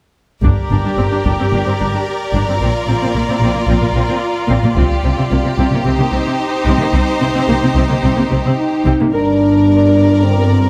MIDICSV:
0, 0, Header, 1, 7, 480
1, 0, Start_track
1, 0, Tempo, 542495
1, 382, Time_signature, 4, 2, 24, 8
1, 5178, Tempo, 547445
1, 9425, End_track
2, 0, Start_track
2, 0, Title_t, "Violin section"
2, 0, Program_c, 0, 48
2, 383, Note_on_c, 0, 74, 33
2, 390, Note_on_c, 0, 70, 33
2, 4185, Note_off_c, 0, 70, 0
2, 4220, Note_on_c, 0, 67, 44
2, 5141, Note_off_c, 0, 74, 0
2, 5181, Note_on_c, 0, 72, 49
2, 7851, Note_off_c, 0, 67, 0
2, 7887, Note_off_c, 0, 72, 0
2, 8061, Note_on_c, 0, 70, 34
2, 8061, Note_on_c, 0, 74, 37
2, 9425, Note_off_c, 0, 70, 0
2, 9425, Note_off_c, 0, 74, 0
2, 9425, End_track
3, 0, Start_track
3, 0, Title_t, "French horn section"
3, 0, Program_c, 1, 60
3, 7555, Note_on_c, 1, 63, 53
3, 8018, Note_off_c, 1, 63, 0
3, 8044, Note_on_c, 1, 62, 54
3, 8993, Note_off_c, 1, 62, 0
3, 9020, Note_on_c, 1, 60, 54
3, 9425, Note_off_c, 1, 60, 0
3, 9425, End_track
4, 0, Start_track
4, 0, Title_t, "Viola section"
4, 0, Program_c, 2, 48
4, 388, Note_on_c, 2, 62, 33
4, 393, Note_on_c, 2, 67, 38
4, 435, Note_off_c, 2, 62, 0
4, 630, Note_on_c, 2, 62, 25
4, 677, Note_off_c, 2, 62, 0
4, 749, Note_on_c, 2, 62, 44
4, 796, Note_off_c, 2, 62, 0
4, 865, Note_on_c, 2, 60, 27
4, 914, Note_off_c, 2, 60, 0
4, 987, Note_on_c, 2, 62, 28
4, 1035, Note_off_c, 2, 62, 0
4, 1106, Note_on_c, 2, 62, 35
4, 1154, Note_off_c, 2, 62, 0
4, 1237, Note_on_c, 2, 60, 29
4, 1283, Note_off_c, 2, 60, 0
4, 1359, Note_on_c, 2, 62, 37
4, 1405, Note_off_c, 2, 62, 0
4, 1473, Note_on_c, 2, 60, 29
4, 1520, Note_off_c, 2, 60, 0
4, 1590, Note_on_c, 2, 62, 31
4, 1637, Note_off_c, 2, 62, 0
4, 1723, Note_on_c, 2, 62, 37
4, 1768, Note_off_c, 2, 62, 0
4, 2073, Note_on_c, 2, 62, 37
4, 2119, Note_off_c, 2, 62, 0
4, 2195, Note_on_c, 2, 60, 29
4, 2240, Note_off_c, 2, 60, 0
4, 2274, Note_off_c, 2, 67, 0
4, 2317, Note_on_c, 2, 60, 37
4, 2318, Note_on_c, 2, 65, 37
4, 2362, Note_off_c, 2, 60, 0
4, 2551, Note_on_c, 2, 60, 30
4, 2597, Note_off_c, 2, 60, 0
4, 2671, Note_on_c, 2, 60, 38
4, 2717, Note_off_c, 2, 60, 0
4, 2784, Note_on_c, 2, 58, 28
4, 2831, Note_off_c, 2, 58, 0
4, 2917, Note_on_c, 2, 60, 27
4, 2961, Note_off_c, 2, 60, 0
4, 3042, Note_on_c, 2, 60, 42
4, 3085, Note_off_c, 2, 60, 0
4, 3148, Note_on_c, 2, 58, 32
4, 3194, Note_off_c, 2, 58, 0
4, 3265, Note_on_c, 2, 60, 38
4, 3311, Note_off_c, 2, 60, 0
4, 3377, Note_on_c, 2, 58, 31
4, 3425, Note_off_c, 2, 58, 0
4, 3504, Note_on_c, 2, 60, 33
4, 3551, Note_off_c, 2, 60, 0
4, 3626, Note_on_c, 2, 60, 46
4, 3672, Note_off_c, 2, 60, 0
4, 3978, Note_on_c, 2, 60, 44
4, 4025, Note_off_c, 2, 60, 0
4, 4106, Note_on_c, 2, 58, 36
4, 4152, Note_off_c, 2, 58, 0
4, 4220, Note_on_c, 2, 60, 51
4, 4267, Note_off_c, 2, 60, 0
4, 4460, Note_on_c, 2, 60, 27
4, 4507, Note_off_c, 2, 60, 0
4, 4577, Note_on_c, 2, 60, 52
4, 4625, Note_off_c, 2, 60, 0
4, 4707, Note_on_c, 2, 58, 30
4, 4752, Note_off_c, 2, 58, 0
4, 4825, Note_on_c, 2, 60, 36
4, 4871, Note_off_c, 2, 60, 0
4, 4948, Note_on_c, 2, 60, 54
4, 4993, Note_off_c, 2, 60, 0
4, 5080, Note_on_c, 2, 58, 35
4, 5124, Note_off_c, 2, 58, 0
4, 5183, Note_off_c, 2, 65, 0
4, 5183, Note_on_c, 2, 60, 48
4, 5186, Note_on_c, 2, 63, 44
4, 5229, Note_off_c, 2, 60, 0
4, 5305, Note_on_c, 2, 58, 40
4, 5351, Note_off_c, 2, 58, 0
4, 5420, Note_on_c, 2, 60, 38
4, 5467, Note_off_c, 2, 60, 0
4, 5537, Note_on_c, 2, 60, 51
4, 5585, Note_off_c, 2, 60, 0
4, 5908, Note_on_c, 2, 60, 50
4, 5953, Note_off_c, 2, 60, 0
4, 6019, Note_on_c, 2, 58, 38
4, 6065, Note_off_c, 2, 58, 0
4, 6135, Note_on_c, 2, 60, 45
4, 6182, Note_off_c, 2, 60, 0
4, 6365, Note_on_c, 2, 60, 38
4, 6413, Note_off_c, 2, 60, 0
4, 6489, Note_on_c, 2, 60, 62
4, 6537, Note_off_c, 2, 60, 0
4, 6607, Note_on_c, 2, 58, 44
4, 6655, Note_off_c, 2, 58, 0
4, 6739, Note_on_c, 2, 60, 39
4, 6785, Note_off_c, 2, 60, 0
4, 6851, Note_on_c, 2, 60, 50
4, 6899, Note_off_c, 2, 60, 0
4, 6961, Note_on_c, 2, 58, 36
4, 7011, Note_off_c, 2, 58, 0
4, 7086, Note_on_c, 2, 60, 48
4, 7135, Note_off_c, 2, 60, 0
4, 7201, Note_on_c, 2, 58, 34
4, 7251, Note_off_c, 2, 58, 0
4, 7333, Note_on_c, 2, 60, 35
4, 7381, Note_off_c, 2, 60, 0
4, 7462, Note_on_c, 2, 60, 42
4, 7509, Note_off_c, 2, 60, 0
4, 7815, Note_on_c, 2, 60, 44
4, 7865, Note_off_c, 2, 60, 0
4, 7889, Note_off_c, 2, 63, 0
4, 7939, Note_on_c, 2, 58, 34
4, 7988, Note_off_c, 2, 58, 0
4, 8055, Note_on_c, 2, 70, 31
4, 8057, Note_off_c, 2, 70, 0
4, 8057, Note_on_c, 2, 70, 36
4, 9425, Note_off_c, 2, 70, 0
4, 9425, End_track
5, 0, Start_track
5, 0, Title_t, "Cello section"
5, 0, Program_c, 3, 48
5, 387, Note_on_c, 3, 43, 32
5, 434, Note_off_c, 3, 43, 0
5, 632, Note_on_c, 3, 43, 25
5, 679, Note_off_c, 3, 43, 0
5, 750, Note_on_c, 3, 43, 44
5, 797, Note_off_c, 3, 43, 0
5, 883, Note_on_c, 3, 43, 29
5, 928, Note_off_c, 3, 43, 0
5, 994, Note_on_c, 3, 43, 30
5, 1040, Note_off_c, 3, 43, 0
5, 1116, Note_on_c, 3, 43, 41
5, 1162, Note_off_c, 3, 43, 0
5, 1238, Note_on_c, 3, 43, 28
5, 1284, Note_off_c, 3, 43, 0
5, 1357, Note_on_c, 3, 43, 44
5, 1403, Note_off_c, 3, 43, 0
5, 1476, Note_on_c, 3, 43, 28
5, 1522, Note_off_c, 3, 43, 0
5, 1601, Note_on_c, 3, 43, 32
5, 1646, Note_off_c, 3, 43, 0
5, 1708, Note_on_c, 3, 43, 39
5, 1756, Note_off_c, 3, 43, 0
5, 2069, Note_on_c, 3, 43, 40
5, 2116, Note_off_c, 3, 43, 0
5, 2186, Note_on_c, 3, 43, 27
5, 2233, Note_off_c, 3, 43, 0
5, 2308, Note_on_c, 3, 46, 37
5, 2355, Note_off_c, 3, 46, 0
5, 2555, Note_on_c, 3, 46, 31
5, 2600, Note_off_c, 3, 46, 0
5, 2673, Note_on_c, 3, 46, 42
5, 2718, Note_off_c, 3, 46, 0
5, 2797, Note_on_c, 3, 46, 33
5, 2841, Note_off_c, 3, 46, 0
5, 2907, Note_on_c, 3, 46, 31
5, 2953, Note_off_c, 3, 46, 0
5, 3026, Note_on_c, 3, 46, 41
5, 3072, Note_off_c, 3, 46, 0
5, 3139, Note_on_c, 3, 46, 32
5, 3186, Note_off_c, 3, 46, 0
5, 3262, Note_on_c, 3, 46, 41
5, 3308, Note_off_c, 3, 46, 0
5, 3379, Note_on_c, 3, 46, 29
5, 3426, Note_off_c, 3, 46, 0
5, 3498, Note_on_c, 3, 46, 31
5, 3545, Note_off_c, 3, 46, 0
5, 3612, Note_on_c, 3, 46, 42
5, 3661, Note_off_c, 3, 46, 0
5, 3968, Note_on_c, 3, 46, 49
5, 4018, Note_off_c, 3, 46, 0
5, 4098, Note_on_c, 3, 46, 29
5, 4145, Note_off_c, 3, 46, 0
5, 4218, Note_on_c, 3, 48, 37
5, 4265, Note_off_c, 3, 48, 0
5, 4458, Note_on_c, 3, 48, 36
5, 4506, Note_off_c, 3, 48, 0
5, 4577, Note_on_c, 3, 48, 53
5, 4625, Note_off_c, 3, 48, 0
5, 4691, Note_on_c, 3, 48, 37
5, 4740, Note_off_c, 3, 48, 0
5, 4811, Note_on_c, 3, 48, 40
5, 4860, Note_off_c, 3, 48, 0
5, 4935, Note_on_c, 3, 48, 51
5, 4983, Note_off_c, 3, 48, 0
5, 5051, Note_on_c, 3, 48, 35
5, 5100, Note_off_c, 3, 48, 0
5, 5172, Note_on_c, 3, 48, 57
5, 5220, Note_off_c, 3, 48, 0
5, 5285, Note_on_c, 3, 48, 37
5, 5335, Note_off_c, 3, 48, 0
5, 5410, Note_on_c, 3, 48, 39
5, 5459, Note_off_c, 3, 48, 0
5, 5535, Note_on_c, 3, 48, 52
5, 5583, Note_off_c, 3, 48, 0
5, 5881, Note_on_c, 3, 48, 59
5, 5931, Note_off_c, 3, 48, 0
5, 6010, Note_on_c, 3, 48, 36
5, 6058, Note_off_c, 3, 48, 0
5, 6122, Note_on_c, 3, 48, 45
5, 6172, Note_off_c, 3, 48, 0
5, 6364, Note_on_c, 3, 48, 40
5, 6413, Note_off_c, 3, 48, 0
5, 6486, Note_on_c, 3, 48, 54
5, 6535, Note_off_c, 3, 48, 0
5, 6615, Note_on_c, 3, 48, 42
5, 6661, Note_off_c, 3, 48, 0
5, 6736, Note_on_c, 3, 48, 44
5, 6783, Note_off_c, 3, 48, 0
5, 6855, Note_on_c, 3, 48, 56
5, 6902, Note_off_c, 3, 48, 0
5, 6975, Note_on_c, 3, 48, 34
5, 7022, Note_off_c, 3, 48, 0
5, 7089, Note_on_c, 3, 48, 51
5, 7137, Note_off_c, 3, 48, 0
5, 7211, Note_on_c, 3, 48, 36
5, 7259, Note_off_c, 3, 48, 0
5, 7328, Note_on_c, 3, 48, 38
5, 7377, Note_off_c, 3, 48, 0
5, 7456, Note_on_c, 3, 48, 49
5, 7504, Note_off_c, 3, 48, 0
5, 7812, Note_on_c, 3, 48, 48
5, 7862, Note_off_c, 3, 48, 0
5, 7945, Note_on_c, 3, 48, 29
5, 7993, Note_off_c, 3, 48, 0
5, 8065, Note_on_c, 3, 43, 37
5, 9425, Note_off_c, 3, 43, 0
5, 9425, End_track
6, 0, Start_track
6, 0, Title_t, "Double bass section"
6, 0, Program_c, 4, 48
6, 379, Note_on_c, 4, 31, 39
6, 428, Note_off_c, 4, 31, 0
6, 629, Note_on_c, 4, 31, 31
6, 677, Note_off_c, 4, 31, 0
6, 869, Note_on_c, 4, 31, 28
6, 916, Note_off_c, 4, 31, 0
6, 1110, Note_on_c, 4, 31, 36
6, 1157, Note_off_c, 4, 31, 0
6, 1346, Note_on_c, 4, 31, 39
6, 1394, Note_off_c, 4, 31, 0
6, 1599, Note_on_c, 4, 31, 25
6, 1644, Note_off_c, 4, 31, 0
6, 2069, Note_on_c, 4, 31, 38
6, 2116, Note_off_c, 4, 31, 0
6, 2309, Note_on_c, 4, 34, 37
6, 2355, Note_off_c, 4, 34, 0
6, 2545, Note_on_c, 4, 34, 32
6, 2592, Note_off_c, 4, 34, 0
6, 2778, Note_on_c, 4, 34, 34
6, 2826, Note_off_c, 4, 34, 0
6, 3014, Note_on_c, 4, 34, 39
6, 3062, Note_off_c, 4, 34, 0
6, 3253, Note_on_c, 4, 34, 46
6, 3301, Note_off_c, 4, 34, 0
6, 3482, Note_on_c, 4, 34, 28
6, 3533, Note_off_c, 4, 34, 0
6, 3976, Note_on_c, 4, 34, 45
6, 4024, Note_off_c, 4, 34, 0
6, 4209, Note_on_c, 4, 36, 39
6, 4259, Note_off_c, 4, 36, 0
6, 4457, Note_on_c, 4, 36, 34
6, 4504, Note_off_c, 4, 36, 0
6, 4707, Note_on_c, 4, 36, 32
6, 4752, Note_off_c, 4, 36, 0
6, 4937, Note_on_c, 4, 36, 45
6, 4985, Note_off_c, 4, 36, 0
6, 5175, Note_on_c, 4, 36, 47
6, 5223, Note_off_c, 4, 36, 0
6, 5409, Note_on_c, 4, 36, 31
6, 5458, Note_off_c, 4, 36, 0
6, 5890, Note_on_c, 4, 36, 46
6, 5938, Note_off_c, 4, 36, 0
6, 6126, Note_on_c, 4, 36, 54
6, 6175, Note_off_c, 4, 36, 0
6, 6367, Note_on_c, 4, 36, 38
6, 6415, Note_off_c, 4, 36, 0
6, 6608, Note_on_c, 4, 36, 41
6, 6656, Note_off_c, 4, 36, 0
6, 6849, Note_on_c, 4, 36, 52
6, 6897, Note_off_c, 4, 36, 0
6, 7096, Note_on_c, 4, 36, 54
6, 7143, Note_off_c, 4, 36, 0
6, 7336, Note_on_c, 4, 36, 32
6, 7383, Note_off_c, 4, 36, 0
6, 7823, Note_on_c, 4, 36, 44
6, 7871, Note_off_c, 4, 36, 0
6, 8065, Note_on_c, 4, 31, 34
6, 9425, Note_off_c, 4, 31, 0
6, 9425, End_track
7, 0, Start_track
7, 0, Title_t, "Taiko and cinematic ensemble drums"
7, 390, Note_on_c, 9, 41, 35
7, 478, Note_off_c, 9, 41, 0
7, 1111, Note_on_c, 9, 41, 25
7, 1200, Note_off_c, 9, 41, 0
7, 4222, Note_on_c, 9, 41, 42
7, 4310, Note_off_c, 9, 41, 0
7, 9425, End_track
0, 0, End_of_file